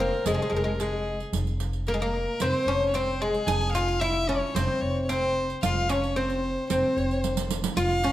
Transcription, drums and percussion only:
0.26 riq medium
0.80 riq soft
1.20 riq soft
1.33 riq medium
1.47 riq soft
1.60 riq soft
1.73 riq soft
1.87 riq soft
2.40 riq medium
2.94 riq soft
3.34 riq soft
3.48 riq medium
3.61 riq soft
3.75 riq soft
3.88 riq soft
4.02 riq soft
4.56 riq medium
5.09 riq medium
5.50 riq soft
5.63 riq medium
5.89 riq soft
6.04 riq soft
6.30 riq soft
6.70 riq medium
6.98 riq soft
7.11 riq soft
7.24 riq medium
7.37 riq medium
7.51 riq medium
7.64 riq medium
7.77 riq medium
7.91 riq soft
8.04 riq soft

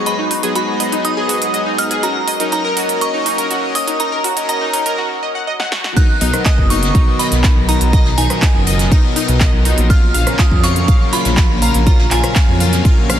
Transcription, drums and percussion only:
0.06 closed hi-hat medium
0.31 open hi-hat loud
0.43 closed hi-hat medium
0.55 closed hi-hat medium
0.80 open hi-hat loud
0.92 closed hi-hat medium
1.05 closed hi-hat medium
1.29 open hi-hat loud
1.42 closed hi-hat medium
1.54 closed hi-hat medium
1.78 open hi-hat loud
1.91 closed hi-hat medium
2.03 closed hi-hat medium
2.28 open hi-hat loud
2.40 closed hi-hat medium
2.52 closed hi-hat medium
2.77 open hi-hat loud
2.89 closed hi-hat medium
3.01 closed hi-hat medium
3.26 open hi-hat loud
3.38 closed hi-hat medium
3.51 closed hi-hat medium
3.75 open hi-hat loud
3.88 closed hi-hat medium
4.00 closed hi-hat medium
4.24 open hi-hat loud
4.37 closed hi-hat medium
4.49 closed hi-hat medium
4.74 open hi-hat loud
4.86 closed hi-hat medium
5.60 snare medium
5.72 snare medium
5.84 snare medium
5.96 kick loud
5.96 closed hi-hat medium
5.96 ride medium
6.21 open hi-hat loud
6.21 ride medium
6.34 cross-stick medium
6.34 closed hi-hat medium
6.45 kick loud
6.45 snare loud
6.45 clap loud
6.45 closed hi-hat medium
6.45 ride medium
6.58 kick medium
6.70 open hi-hat loud
6.70 ride medium
6.83 snare soft
6.83 closed hi-hat medium
6.94 kick loud
6.94 closed hi-hat medium
6.94 ride loud
7.19 snare medium
7.19 open hi-hat loud
7.19 ride medium
7.32 snare soft
7.32 closed hi-hat medium
7.44 kick loud
7.44 snare loud
7.44 clap loud
7.44 closed hi-hat medium
7.44 ride medium
7.69 open hi-hat loud
7.69 ride medium
7.81 closed hi-hat medium
7.93 kick loud
7.93 closed hi-hat medium
7.93 ride loud
8.05 snare soft
8.17 open hi-hat loud
8.17 ride medium
8.30 cross-stick medium
8.30 closed hi-hat medium
8.42 kick loud
8.42 snare loud
8.42 clap loud
8.42 closed hi-hat medium
8.42 ride loud
8.55 ride soft
8.66 open hi-hat loud
8.66 ride medium
8.79 snare soft
8.79 closed hi-hat medium
8.91 kick loud
8.91 closed hi-hat medium
8.91 ride loud
9.16 open hi-hat loud
9.16 ride medium
9.28 closed hi-hat medium
9.40 kick loud
9.40 snare loud
9.40 clap loud
9.40 closed hi-hat medium
9.65 open hi-hat loud
9.65 ride medium
9.78 closed hi-hat medium
9.90 kick loud
9.90 closed hi-hat medium
9.90 ride medium
10.14 open hi-hat loud
10.14 ride medium
10.27 cross-stick medium
10.27 closed hi-hat medium
10.39 kick loud
10.39 snare loud
10.39 clap loud
10.39 closed hi-hat medium
10.39 ride medium
10.51 kick medium
10.63 snare loud
10.63 open hi-hat loud
10.63 ride medium
10.76 closed hi-hat medium
10.88 kick loud
10.88 closed hi-hat medium
10.88 ride medium
11.13 snare medium
11.13 open hi-hat loud
11.13 ride medium
11.25 snare soft
11.25 closed hi-hat medium
11.37 kick loud
11.37 snare loud
11.37 clap loud
11.37 closed hi-hat soft
11.37 ride medium
11.62 open hi-hat loud
11.62 ride medium
11.74 closed hi-hat medium
11.87 kick loud
11.87 closed hi-hat medium
11.87 ride medium
11.99 snare soft
12.11 clap medium
12.11 open hi-hat loud
12.11 ride medium
12.24 cross-stick medium
12.24 closed hi-hat medium
12.36 kick loud
12.36 snare loud
12.36 clap loud
12.36 closed hi-hat medium
12.36 ride loud
12.48 ride soft
12.60 open hi-hat loud
12.60 ride medium
12.73 snare soft
12.73 closed hi-hat medium
12.85 kick loud
12.85 closed hi-hat soft
12.85 ride medium
13.09 cross-stick medium
13.09 open hi-hat loud
13.09 ride medium

